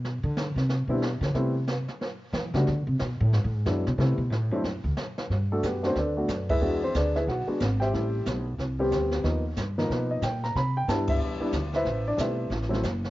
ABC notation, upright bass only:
X:1
M:4/4
L:1/8
Q:"Swing" 1/4=183
K:G
V:1 name="Upright bass" clef=bass
B,, D,2 C,2 B,,2 D, | C,3 z3 E, ^C, | D, C, B,, A,, (3^G,, A,, G,, F,, B,, | C, B,, A,, G,, F,, D,, z2 |
G,,2 F,,2 D,,2 F,,2 | E,,2 D,,2 B,,, z ^G,,,2 | A,,,2 B,,,2 C,,2 D,,2 | ^D,,2 G,,2 B,,2 ^A,,2 |
C,2 G,,2 E,, z D,,2 | A,,,2 B,,,2 A,,,2 F,,,2 |]